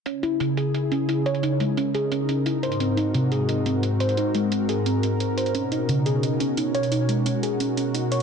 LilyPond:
<<
  \new Staff \with { instrumentName = "Analog synth pad" } { \time 4/4 \key cis \dorian \tempo 4 = 175 << { ais'1~ | ais'1~ | ais'1~ | ais'1~ |
ais'1~ | ais'1 | } \\ { <cis dis' e' gis'>1~ | <cis dis' e' gis'>2.~ <cis dis' e' gis'>8 <gis, bis fis'>8~ | <gis, bis fis'>1~ | <gis, bis fis'>1 |
<b, cis' dis' fis'>1~ | <b, cis' dis' fis'>1 | } >> }
  \new Staff \with { instrumentName = "Synth pluck" } { \time 4/4 \key cis \dorian cis'8 e'8 cis8 gis'8 e'8 cis'8 e'8 cis''8 | dis'16 r16 gis8 cis'8 gis'8 cis'8 cis'8 e'16 r16 bis'16 r16 | bis16 r16 dis'16 r16 bis,8 gis'8 dis'8 bis8 dis'16 r16 bis'16 r16 | dis'16 r16 gis8 bis8 gis'8 bis8 bis8 bis8 bis'16 r16 |
cis'16 r16 dis'16 r16 cis8 gis'8 dis'8 cis'8 dis'16 r16 cis''16 r16 | dis'16 r16 gis8 cis'8 gis'8 cis'8 cis'8 dis'16 r16 cis''16 r16 | }
  \new DrumStaff \with { instrumentName = "Drums" } \drummode { \time 4/4 hh8 hh8 hh8 hh8 hh8 hh8 hh8 hh16 hh16 | hh8 hh8 hh8 hh8 hh8 hh8 hh8 hh16 hh16 | hh8 hh8 hh8 hh8 hh8 hh8 hh8 hh16 hh16 | hh8 hh8 hh8 hh8 hh8 hh8 hh8 hh16 hh16 |
hh8 hh8 hh8 hh8 hh8 hh8 hh8 hh16 hh16 | hh8 hh8 hh8 hh8 hh8 hh8 hh8 hh8 | }
>>